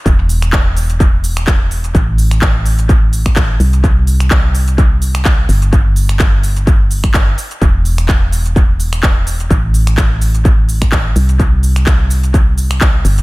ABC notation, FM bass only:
X:1
M:4/4
L:1/8
Q:"Swing 16ths" 1/4=127
K:Em
V:1 name="FM bass" clef=bass
E,,,8 | A,,,6- A,,, C,,- | C,,6- C,, G,,,- | G,,,6- G,,, z |
E,,,8 | A,,,6- A,,, C,,- | C,,6- C,, G,,, |]